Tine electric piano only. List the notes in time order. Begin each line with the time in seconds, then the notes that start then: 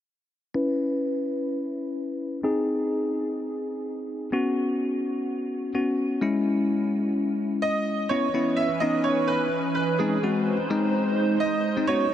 0.54 C#4 E4 B4
2.43 C4 D#4 G#4
4.32 B3 C#4 F#4
5.74 B3 C#4 F#4
6.21 G#3 C#4 E4
8.11 B3 C#4 E4
8.34 B3 C#4 E4
8.81 B3 C#4 D#4
10.00 G#3 C4 D#4
10.23 G#3 C4 F#4
10.70 G#3 C4 D#4
11.77 G#3 C4 D#4
11.89 B3 C#4 F#4